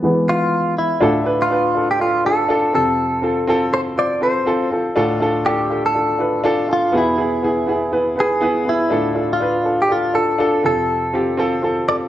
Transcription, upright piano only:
0.00 0.03 E3 medium
0.00 0.24 E3 soft
0.00 0.03 G#3 medium
0.00 0.25 G#3 soft
0.00 0.04 B3 medium
0.00 0.25 B3 medium
1.01 2.70 D2 medium
1.01 2.70 A2 medium
1.01 1.22 D4 loud
1.01 1.23 F4 medium
1.01 1.24 A4 loud
1.24 1.47 D4 medium
1.24 1.48 F4 medium
1.24 1.48 B4 loud
1.50 1.73 D4 medium
1.50 1.73 F4 medium
1.50 1.74 B4 medium
1.75 1.97 D4 medium
1.75 1.98 F4 medium
1.75 1.98 A4 medium
2.00 2.22 D4 medium
2.00 2.23 F4 medium
2.00 2.23 A4 medium
2.25 2.47 D4 medium
2.25 2.47 F4 medium
2.25 2.48 A4 medium
2.48 2.71 D4 loud
2.48 2.72 F4 loud
2.48 2.72 A4 loud
2.73 4.68 F2 medium
2.73 4.68 C3 medium
2.73 3.19 C4 medium
2.73 3.19 F4 medium
2.73 3.20 A4 medium
3.22 3.45 C4 medium
3.22 3.46 F4 medium
3.22 3.46 A4 medium
3.47 3.70 C4 loud
3.47 3.71 F4 loud
3.47 3.71 A4 loud
3.72 3.95 C4 medium
3.72 3.96 F4 medium
3.72 3.96 A4 medium
3.96 4.19 C4 medium
3.96 4.20 F4 medium
3.96 4.20 C5 medium
4.21 4.44 C4 medium
4.21 4.44 F4 medium
4.21 4.45 A4 medium
4.46 4.69 C4 loud
4.46 4.69 F4 loud
4.46 4.70 A4 loud
4.71 4.94 C4 medium
4.71 4.94 F4 medium
4.71 4.95 A4 medium
4.96 6.90 D2 medium
4.96 6.90 A2 medium
4.96 5.19 D4 loud
4.96 5.19 F4 loud
4.96 5.19 A4 loud
5.20 5.43 D4 loud
5.20 5.44 F4 loud
5.20 5.44 A4 loud
5.46 5.68 D4 loud
5.46 5.69 F4 medium
5.46 5.69 A4 loud
5.70 5.93 D4 medium
5.70 5.93 F4 medium
5.70 5.94 A4 medium
5.95 6.17 D4 medium
5.95 6.18 F4 medium
5.95 6.18 A4 medium
6.19 6.42 D4 medium
6.19 6.42 F4 medium
6.19 6.43 B4 medium
6.44 6.67 D4 loud
6.44 6.67 F4 loud
6.44 6.67 A4 loud
6.68 6.91 D4 medium
6.68 6.92 F4 medium
6.68 6.92 A4 medium
6.92 8.87 E2 medium
6.92 8.87 B2 medium
6.92 7.15 B3 loud
6.92 7.16 E4 loud
6.92 7.16 G#4 loud
7.16 7.40 B3 medium
7.16 7.41 E4 medium
7.16 7.41 G#4 loud
7.42 7.65 B3 medium
7.42 7.66 E4 medium
7.42 7.66 G#4 loud
7.67 7.90 B3 medium
7.67 7.91 E4 medium
7.67 7.91 G#4 loud
7.92 8.14 B3 medium
7.92 8.15 E4 medium
7.92 8.15 B4 loud
8.16 8.39 B3 medium
8.16 8.40 E4 medium
8.16 8.40 B4 medium
8.41 8.64 B3 loud
8.41 8.64 E4 loud
8.41 8.65 B4 loud
8.65 8.89 B3 medium
8.65 8.89 E4 medium
8.65 8.90 G#4 medium
8.90 10.61 D2 medium
8.90 10.61 A2 medium
8.90 9.13 D4 loud
8.90 9.14 F4 medium
8.90 9.14 A4 loud
9.15 9.38 D4 medium
9.15 9.39 F4 medium
9.15 9.39 A4 medium
9.40 9.62 D4 medium
9.40 9.63 F4 medium
9.40 9.64 B4 medium
9.64 9.87 D4 medium
9.64 9.88 F4 medium
9.64 9.88 A4 medium
9.89 10.12 D4 medium
9.89 10.13 F4 medium
9.89 10.13 A4 medium
10.14 10.37 D4 medium
10.14 10.38 F4 medium
10.14 10.38 A4 medium
10.39 10.62 D4 loud
10.39 10.62 F4 loud
10.39 10.63 A4 loud
10.63 12.08 F2 medium
10.63 12.08 C3 medium
10.63 11.09 C4 medium
10.63 11.10 F4 medium
10.63 11.10 A4 medium
11.13 11.36 C4 loud
11.13 11.37 F4 medium
11.13 11.37 G4 loud
11.37 11.61 C4 loud
11.37 11.61 F4 loud
11.37 11.62 A4 loud
11.62 11.86 C4 medium
11.62 11.86 F4 medium
11.62 11.87 A4 loud
11.88 12.08 C4 medium
11.88 12.08 F4 medium
11.88 12.08 A4 medium

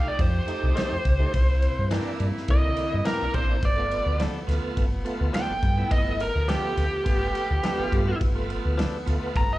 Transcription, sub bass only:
0.19 0.41 F2 loud
0.63 0.73 C2 loud
0.92 0.98 F2 soft
1.06 1.27 C#2 medium
1.34 1.67 C2 loud
1.79 2.00 G2 medium
2.20 2.31 G2 loud
2.49 2.70 C2 medium
2.94 3.03 G2 medium
3.22 3.28 C2 soft
3.34 3.56 A1 loud
3.63 3.96 G1 loud
4.06 4.28 D2 medium
4.48 4.60 D2 medium
4.77 4.99 G1 loud
5.20 5.31 D2 medium
5.50 5.56 G1 soft
5.63 5.85 G2 medium
5.92 6.25 G1 loud
6.35 6.57 D2 medium
6.77 6.89 D2 medium
7.06 7.28 G1 loud
7.50 7.60 D2 loud
7.79 7.85 G1 soft
7.93 8.14 G2 loud
8.21 8.55 G1 loud
8.65 8.87 D2 medium
9.07 9.19 D2 medium
9.35 9.57 G1 loud

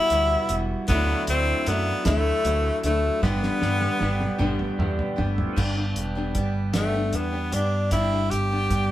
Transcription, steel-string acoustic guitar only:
0.00 0.50 E2 medium
0.00 0.50 B2 medium
0.00 0.50 E3 medium
0.00 0.49 G3 medium
0.00 0.49 B3 medium
0.00 0.48 F#4 medium
0.49 0.89 E3 soft
0.49 0.89 G3 soft
0.49 0.89 B3 medium
0.49 0.88 F#4 medium
0.88 1.67 D3 medium
0.88 1.64 F#3 medium
0.88 1.65 A3 medium
0.88 1.67 D4 medium
0.88 1.68 E4 medium
1.65 2.05 F#3 medium
1.65 2.04 A3 medium
1.65 2.04 D4 medium
1.65 2.03 E4 medium
2.04 2.84 D3 medium
2.04 2.84 F#3 medium
2.04 2.84 A3 medium
2.04 2.85 D4 medium
2.04 2.82 E4 medium
2.83 3.23 A3 soft
2.83 3.23 D4 soft
2.83 3.23 E4 medium
3.22 4.00 G2 medium
3.22 4.01 D3 medium
3.22 3.98 G3 medium
3.22 3.99 B3 medium
3.22 4.00 D4 medium
3.22 4.01 G4 medium
3.99 4.38 G3 medium
3.99 4.38 B3 medium
3.99 4.38 D4 medium
3.99 4.37 G4 medium
4.38 5.19 G2 medium
4.38 5.18 D3 medium
4.38 5.18 G3 medium
4.38 5.17 B3 medium
4.38 5.16 D4 medium
4.38 5.15 G4 medium
5.16 5.56 G3 medium
5.16 5.56 B3 medium
5.16 5.57 D4 medium
5.16 5.56 G4 medium
5.56 5.76 G2 medium
5.56 5.76 D3 medium
5.56 5.77 G3 medium
5.56 5.76 B3 medium
5.56 5.75 D4 medium
5.56 5.74 G4 loud
5.75 6.17 G3 soft
5.75 6.16 B3 soft
5.75 6.15 D4 medium
5.75 6.14 G4 medium
6.15 6.33 G3 soft
6.15 6.35 B3 medium
6.15 6.36 D4 medium
6.15 6.35 G4 medium
6.35 6.72 G3 medium
6.35 6.73 B3 medium
6.35 6.73 D4 medium
6.35 6.74 G4 medium
6.73 6.93 G2 medium
6.73 6.93 D3 medium
6.73 6.93 G3 medium
6.73 6.94 B3 medium
6.73 6.93 D4 medium
6.73 6.92 G4 medium
6.93 7.34 G3 soft
6.93 7.33 B3 soft
6.93 7.32 D4 medium
6.93 7.30 G4 medium
7.32 7.50 G3 soft
7.32 7.52 B3 soft
7.32 7.52 D4 medium
7.32 7.52 G4 medium
7.51 7.91 G3 soft
7.51 7.91 B3 medium
7.51 7.91 D4 medium
7.51 7.92 G4 medium
7.91 8.11 G2 medium
7.91 8.11 D3 medium
7.91 8.11 G3 medium
7.91 8.12 B3 medium
7.91 8.11 D4 medium
7.91 8.11 G4 medium
8.12 8.52 G3 soft
8.12 8.51 B3 soft
8.12 8.50 D4 soft
8.12 8.49 G4 medium
8.50 8.68 G3 soft
8.50 8.70 B3 soft
8.50 8.71 D4 soft
8.50 8.70 G4 medium
8.70 8.91 G3 medium
8.70 8.91 B3 medium
8.70 8.91 D4 medium
8.70 8.91 G4 medium

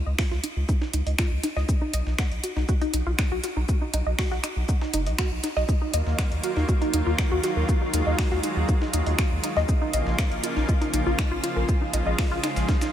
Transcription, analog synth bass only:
0.07 0.14 C#2 medium
0.32 0.39 C#2 medium
0.57 0.64 C#2 medium
0.94 1.02 C#2 medium
1.07 1.14 C#2 medium
1.32 1.39 C#2 medium
1.57 1.64 C#2 medium
1.94 2.02 B1 medium
2.07 2.14 B1 medium
2.32 2.39 B1 medium
2.56 2.64 B1 medium
2.94 3.02 B1 medium
3.07 3.14 B1 medium
3.32 3.39 B1 medium
3.57 3.64 B1 medium
3.94 4.02 B1 medium
4.07 4.14 B1 medium
4.31 4.39 B1 medium
4.56 4.64 B1 medium
4.94 5.08 F#1 medium
5.07 5.14 B1 medium
5.32 5.39 B1 medium
5.57 5.64 B1 medium
5.94 6.02 D#2 medium
6.07 6.14 D#2 medium
6.32 6.39 D#2 medium
6.57 6.64 D#2 medium
6.94 7.02 D#2 medium
7.07 7.14 D#2 medium
7.32 7.39 D#2 medium
7.57 7.64 D#2 medium
7.94 8.02 D#2 medium
8.07 8.14 D#2 medium
8.32 8.39 D#2 medium
8.57 8.64 D#2 medium
8.94 9.02 D#2 medium
9.07 9.14 D#2 medium
9.32 9.39 D#2 medium
9.57 9.64 D#2 medium
9.94 10.02 A#1 loud
10.07 10.14 A#1 medium
10.31 10.39 A#1 medium
10.57 10.64 A#1 medium
10.94 11.02 A#1 medium
11.07 11.14 A#1 medium
11.32 11.39 A#1 medium
11.56 11.64 A#1 medium
11.94 12.02 A#1 loud
12.06 12.14 A#1 medium
12.31 12.39 A#1 medium
12.56 12.64 A#1 medium

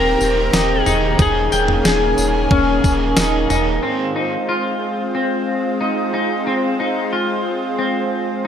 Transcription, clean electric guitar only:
0.00 0.53 C4 medium
0.53 0.85 D#4 medium
0.86 1.18 D#4 medium
1.19 1.52 D#4 medium
1.52 1.85 G5 medium
1.85 2.51 G#4 medium
2.51 3.17 C#4 medium
3.17 3.49 D#4 medium
3.50 3.82 D#4 medium
3.83 4.15 C4 medium
4.16 4.49 D#4 medium
4.49 5.15 F4 medium
5.15 5.80 C4 medium
5.81 6.13 D#4 medium
6.14 6.46 D#4 medium
6.47 6.79 C4 medium
6.80 7.13 D#4 medium
7.13 7.79 F4 medium
7.79 8.44 C4 medium

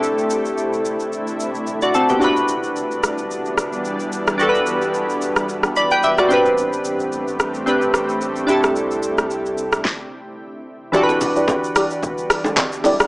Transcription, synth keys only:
0.00 1.89 C3 medium
0.00 1.36 D4 medium
0.00 1.37 E4 medium
0.00 1.37 G4 medium
0.00 1.38 A4 medium
1.82 1.94 F#4 medium
1.82 1.94 D5 medium
1.94 2.09 C4 medium
1.94 2.09 A4 medium
2.10 2.36 B3 medium
2.10 2.21 G4 medium
2.19 4.35 D4 medium
2.19 4.35 F#4 medium
2.19 4.36 G4 medium
2.24 4.37 B4 medium
4.38 5.46 D4 medium
4.38 5.46 F#4 medium
4.38 5.47 G4 medium
4.42 4.48 A4 medium
4.49 5.51 B4 medium
5.76 5.91 D5 medium
5.76 5.90 B5 medium
5.91 6.03 B4 medium
5.91 6.03 G5 medium
6.04 6.18 G4 medium
6.04 6.18 E5 medium
6.19 6.45 F#4 medium
6.19 6.44 D5 medium
6.29 7.63 C4 medium
6.29 7.64 D4 medium
6.29 7.65 G4 medium
6.33 7.66 B4 medium
7.66 8.48 C4 medium
7.66 8.46 D4 soft
7.66 8.49 G4 soft
7.66 8.49 B4 medium
8.47 9.81 D4 medium
8.47 9.82 E4 medium
8.47 9.83 G4 medium
8.51 9.84 A4 medium
10.92 13.07 E3 medium
10.92 13.07 D4 medium
10.92 13.07 F#4 medium
10.92 13.07 G4 medium
10.97 11.03 A4 medium
11.03 13.07 B4 medium

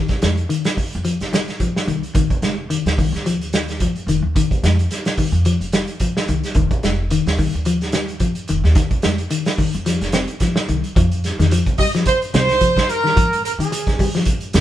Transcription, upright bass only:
0.09 muted upright bass stroke soft
0.23 0.45 F2 medium
0.77 muted upright bass stroke soft
0.95 1.16 F2 medium
1.21 1.42 F1 medium
1.87 2.00 C2 medium
2.14 2.27 F1 medium
2.42 2.76 F1 medium
2.86 2.95 D#2 medium
2.98 3.10 C2 medium
3.12 3.86 D#2 medium
4.07 4.19 F1 medium
4.22 4.32 D#2 medium
4.51 muted upright bass stroke soft
4.63 4.85 F2 medium
5.18 muted upright bass stroke soft
5.32 5.54 F2 medium
5.60 5.82 F1 medium
6.28 6.40 C2 medium
6.55 6.67 F1 medium
6.84 7.17 F1 medium
7.26 7.36 D#2 medium
7.38 7.50 C2 medium
7.55 8.28 D#2 medium
8.50 8.61 F1 medium
8.64 8.73 D#2 medium
8.91 muted upright bass stroke soft
9.05 9.26 F2 medium
9.58 muted upright bass stroke soft
9.75 9.96 F2 medium
10.01 10.23 F1 medium
10.69 10.81 C2 medium
10.96 11.30 F2 medium
11.39 11.61 F2 medium
12.34 12.56 C2 medium
13.17 13.38 G#2 loud
13.59 14.33 D#3 medium
14.54 14.61 F2 medium

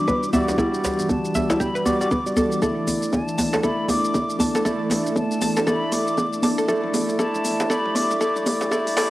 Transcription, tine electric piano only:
0.00 0.31 G3 medium
0.00 0.31 F#4 medium
0.00 0.31 D5 medium
0.33 0.56 G3 medium
0.33 0.56 F#4 medium
0.33 0.56 D5 loud
0.59 1.84 G3 medium
0.59 1.84 F#4 medium
0.59 1.84 D5 medium
1.86 1.97 G3 medium
1.86 1.97 F#4 medium
1.86 1.97 D5 medium
2.01 2.08 G3 medium
2.01 2.08 F#4 medium
2.01 2.08 D5 loud
2.26 2.60 G3 medium
2.26 2.60 F#4 medium
2.26 2.60 D5 medium
2.62 3.62 A3 medium
2.62 3.62 E4 medium
2.62 3.62 D5 medium
3.63 4.64 A3 medium
3.63 4.64 E4 medium
3.63 4.64 D5 medium
4.65 5.66 A3 medium
4.65 5.66 E4 medium
4.65 5.66 D5 medium
5.67 6.67 A3 medium
5.67 6.67 E4 medium
5.67 6.67 D5 medium
6.69 7.18 A3 medium
6.69 7.18 E4 medium
6.69 7.18 D5 medium
7.19 7.69 A3 medium
7.19 7.69 E4 medium
7.19 7.69 D5 medium
7.70 8.20 A3 medium
7.70 8.20 E4 medium
7.70 8.20 D5 loud
8.21 8.70 A3 medium
8.21 8.70 E4 medium
8.21 8.70 D5 loud
8.72 8.96 A3 medium
8.72 8.96 E4 medium
8.72 8.96 D5 loud
8.97 9.10 A3 medium
8.97 9.10 E4 medium
8.97 9.10 D5 loud

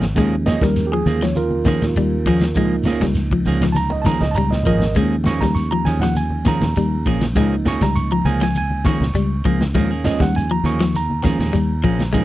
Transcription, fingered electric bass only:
0.00 0.18 G#1 loud
0.16 0.58 D#2 loud
0.61 1.03 D#2 loud
1.06 1.77 D#2 loud
1.82 1.95 D#2 medium
1.98 2.25 D#2 medium
2.26 2.56 D#2 medium
2.56 2.98 C#2 loud
3.01 3.43 C#2 medium
3.47 4.18 C#2 loud
4.22 4.35 C#2 medium
4.37 4.65 C#2 medium
4.66 4.98 G#1 medium
4.96 5.39 D#2 medium
5.42 5.83 D#2 loud
5.87 6.58 D#2 loud
6.62 6.76 D#2 medium
6.77 7.05 D#2 medium
7.06 7.36 A#1 medium
7.36 7.78 C#2 loud
7.81 8.23 C#2 medium
8.25 8.97 C#2 loud
9.00 9.14 C#2 medium
9.14 9.43 C#2 loud
9.45 9.74 C#2 medium
9.74 10.17 D#2 loud
10.20 10.62 D#2 medium
10.64 11.35 D#2 loud
11.39 11.53 D#2 medium
11.54 11.82 D#2 loud
11.84 12.14 A#1 medium
12.14 12.24 C#2 loud

